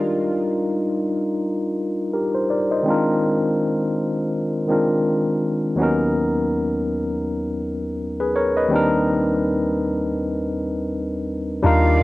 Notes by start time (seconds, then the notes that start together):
Already playing: G3 D4 D#4 F4 A#4
2.13 G4 A#4
2.35 C5
2.50 A#4 D5
2.71 C5 D#5
2.83 D#3 G#3 C4
2.87 D4 F4 A#4
4.68 D#3 G#3 C4 D4 F4 A#4
5.75 D#2 F#3 B3
5.80 C#4 D#4 A#4
8.20 G#4 B4
8.36 A#4 C#5
8.57 B4 D#5
8.68 D#2 G3 C4
8.73 D4 D#4 A#4
11.63 D#2 D#3 G3 D4 D#4 F4 A#4 D5 F5